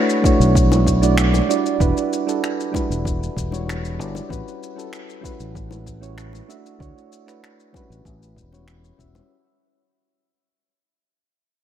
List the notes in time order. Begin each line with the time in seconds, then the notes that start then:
Already playing: A3 D4 E4 F#4 B4 C#5
0.10 shaker
0.22 A3 D4 E4 F#4, kick, shaker
0.26 C#5
0.40 B1, shaker
0.55 kick, shaker
0.72 high bongo, shaker
0.87 kick, shaker
1.01 A3 D4 E4 F#4 D5, shaker
1.18 finger snap, shaker
1.34 high bongo, shaker
1.48 G3 D4 E4 F#4 D5, shaker
1.66 shaker
1.80 E1 G3 D4 E4 F#4 B4, kick, shaker
1.97 shaker
2.13 shaker
2.27 G3 D4 E4 F#4 A4, shaker
2.44 finger snap, shaker
2.60 shaker
2.72 G3 D4 E4 F#4 B4, kick, high bongo
2.76 shaker
2.90 E1, shaker
3.05 kick, shaker
3.23 shaker
3.37 E1, kick, shaker
3.51 G3 D4 E4 F#4 C#5, high bongo, shaker
3.69 finger snap, shaker
3.85 shaker
3.98 G1 G3 D4 E4 F#4 D5, shaker
4.15 high bongo, shaker
4.29 A1 G3 C#4 E4 F#4 B4, kick, shaker
4.48 shaker
4.63 shaker
4.76 G3 C#4 E4 F#4 A4, shaker
4.93 finger snap, shaker
5.10 shaker
5.21 G3 C#4 E4 F#4, kick
5.25 B4, shaker
5.40 A1, shaker
5.55 kick, shaker
5.71 high bongo, shaker
5.87 kick, shaker
6.01 G3 C#4 E4 F#4 C#5, shaker
6.18 finger snap, shaker
6.33 high bongo, shaker
6.48 A3 D4 E4 F#4 E5, shaker
6.66 shaker
6.79 D2 A3 D4 E4 F#4 C#5, kick, shaker
6.98 shaker
7.12 shaker
7.26 A3 D4 E4 F#4 B4, finger snap, shaker
7.44 finger snap, shaker
7.60 shaker
7.73 G3 C#4 E4 F#4, kick, high bongo, shaker
7.77 B4
7.90 A1, shaker
8.05 A1, kick, shaker
8.23 shaker
8.37 E1, kick, shaker
8.52 G3 C#4 E4 F#4 C#5, high bongo, shaker
8.68 finger snap, shaker
8.84 shaker
8.98 E1 G3 C#4 E4 F#4 E5, kick, shaker
9.15 high bongo, shaker